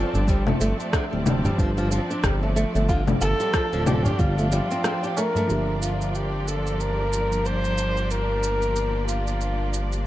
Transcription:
Already playing: F3 C4 D4 A4 D5 A5
0.13 G1 D4, tabla tin, tabla ge, shaker
0.28 G3, kick, shaker
0.47 A3, low conga
0.61 G1 A3, shaker
0.80 A3, shaker
0.93 D3, kick, cross-stick, shaker
1.13 D1 G3
1.26 G3, low conga, shaker
1.45 G3, tabla ge, shaker
1.58 G1 F3, kick, shaker
1.77 F3, tabla tin, shaker
1.91 F3, shaker
2.10 D4, shaker
2.24 G1 G3, kick, cross-stick, shaker
2.42 A3, tabla tin
2.56 A3, shaker
2.75 G1 A3, tabla tin, shaker
2.89 D3 F4, kick, shaker
3.07 G3, low conga, shaker
3.21 G1 G3 A4, shaker
3.40 G3, shaker
3.54 F3, kick, cross-stick, shaker
3.73 D1 F3, shaker
3.86 F3 G4, low conga, shaker
3.95 A4
4.03 D4 G4, tabla na, tabla ge, shaker
4.19 G1 G3 F4, kick, shaker
4.38 A3, shaker
4.52 G3, tabla tin, shaker
4.70 C4, tabla tin, shaker
4.84 C4, cross-stick, shaker
5.03 G4, tabla tin, shaker
5.17 A3 A#4, tabla na, shaker
5.35 A3, tabla tin, tabla ge, shaker
5.47 G1 F3 A#3 D4, shaker
5.51 G4
5.59 A#3
5.82 F4, shaker
6.01 G4, shaker
6.15 G4, shaker
6.48 A4, shaker
6.67 shaker
6.80 A#4, shaker
7.13 shaker
7.32 shaker
7.46 C5, shaker
7.65 shaker
7.78 shaker
7.97 shaker
8.11 A#4, shaker
8.43 shaker
8.62 shaker
8.76 shaker
9.08 F4, shaker
9.27 shaker
9.41 shaker
9.73 shaker
9.93 shaker

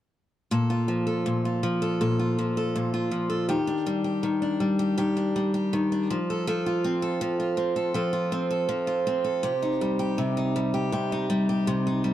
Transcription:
0.51 A#2 A4
0.70 F4
0.88 F3
1.07 A4
1.26 A#2
1.45 F4
1.63 F3
1.82 A4
2.01 A#2 A4
2.19 F4
2.39 F3
2.57 A4
2.76 A#2
2.94 F4
3.11 F3
3.30 A4
3.49 D#3 G4
3.67 D4
3.86 G3
4.04 G4
4.23 D#3
4.42 D4
4.60 G3
4.79 G4
4.98 D#3 G4
5.17 D4
5.36 G3
5.54 G4
5.73 D#3
5.92 D4
6.10 F3
6.30 A4
6.47 F3 A4
6.66 F4
6.84 C4
7.02 A4
7.21 F3
7.40 F4
7.57 C4
7.76 A4
7.94 F3 A4
8.13 F4
8.32 C4
8.51 A4
8.69 F3
8.87 F4
9.07 C4
9.24 A4
9.43 C3 G4
9.62 D#4
9.81 G3
9.99 G4
10.18 C3
10.37 D#4
10.56 G3
10.74 G4
10.92 C3 G4
11.12 D#4
11.30 G3
11.49 G4
11.67 C3
11.87 D#4
12.04 G3

